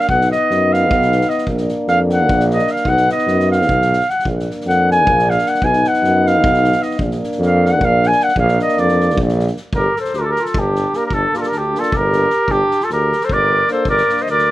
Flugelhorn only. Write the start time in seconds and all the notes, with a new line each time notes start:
0.09 F#5
0.31 D#5
0.73 F5
1.29 D#5
1.89 F5
2.11 F#5
2.52 D#5
2.71 F5
2.88 F#5
3.11 D#5
3.51 F5
4.09 F#5
4.68 F#5
4.91 G#5
5.30 F5
5.48 F#5
5.64 G#5
5.88 F#5
6.27 F5
6.83 D#5
7.44 F5
7.66 F#5
7.85 F5
8.07 G#5
8.23 F#5
8.39 F5
8.62 D#5
8.79 D5
9.75 A#4
10.00 C5
10.19 A4 A#4
10.29 A#4
10.41 A4
10.59 G4
10.96 A#4
11.06 A#4
11.14 A4
11.37 A#4
11.41 A4
11.48 A#4
11.58 G4
11.80 A4
11.97 A#4
12.51 G4
12.84 A4
12.92 A#4
13.25 C5
13.33 D5
13.71 C5
13.89 D5
14.22 D#5
14.30 D5